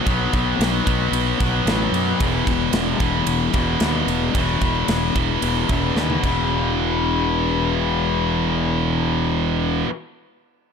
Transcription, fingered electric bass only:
X:1
M:4/4
L:1/8
Q:1/4=112
K:Bphr
V:1 name="Fingered electric bass" clef=bass
B,,, B,,, B,,, B,,, B,,, B,,, A,,, F,, | E,,, E,,, E,,, E,,, E,,, E,,, ^D,, E,,, | E,,, E,,, E,,, E,,, E,,, E,,, ^D,, E,,,- | E,,,8- |
E,,,8 |]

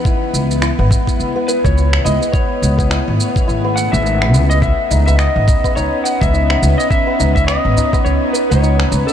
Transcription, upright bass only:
X:1
M:4/4
L:1/16
Q:"Swing 16ths" 1/4=105
K:C#m
V:1 name="Upright bass" clef=bass
z2 C,,2 z G,,, z2 C,, z2 C,,2 z C,, z | z2 C,,2 z G,,, z2 G,,,2 z G,,,3 C,,2 | z2 C,,2 z G,,, z2 C,, z2 C,,2 z C,, z | z2 C,,2 z G,,, z2 C,, z2 C,,2 z C,, z |]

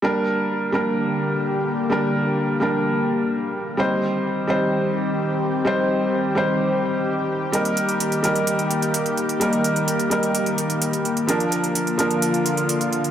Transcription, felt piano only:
X:1
M:4/4
L:1/8
Q:1/4=128
K:Gm
V:1 name="Felt piano"
[G,B,DB]3 [G,B,DB]4- [G,B,DB] | [G,B,DB]3 [G,B,DB]4- [G,B,DB] | [G,CEc]3 [G,CEc]4- [G,CEc] | [G,CEc]3 [G,CEc]4- [G,CEc] |
[G,B,EB]3 [G,B,EB]4- [G,B,EB] | [G,B,EB]3 [G,B,EB]4- [G,B,EB] | [F,B,DB]3 [F,B,DB]4- [F,B,DB] |]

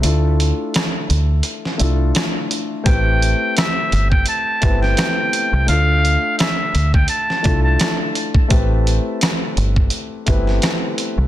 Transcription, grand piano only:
X:1
M:4/4
L:1/8
Q:"Swing 16ths" 1/4=85
K:Am
V:1 name="Grand piano"
[A,DEFA]3 z2 [A,DEFA]2 z | [A,CEGB]3 z2 [A,B,CEGB]2 z | [A,DFA]3 z2 [A,DEFA]2 z | [A,CEGB]3 z2 [A,B,CEGB]2 z |]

